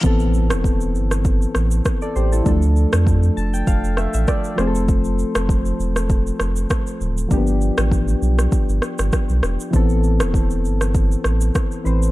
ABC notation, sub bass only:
X:1
M:4/4
L:1/16
Q:"Swing 16ths" 1/4=99
K:Am
V:1 name="Sub bass" clef=bass
A,,,3 E,,,3 G,,,4 A,,,2 z2 A,,,2 | D,,3 F,,3 F,,,2 F,,,3 A,,, z2 F,,,2- | F,,,3 F,,,3 E,,,4 F,,,2 z2 D,,,2 | G,,,3 A,,,3 B,,,2 z G,,, z G,,, z B,,, E,,, z |
A,,,3 E,,,3 G,,,4 A,,,2 z2 A,,,2 |]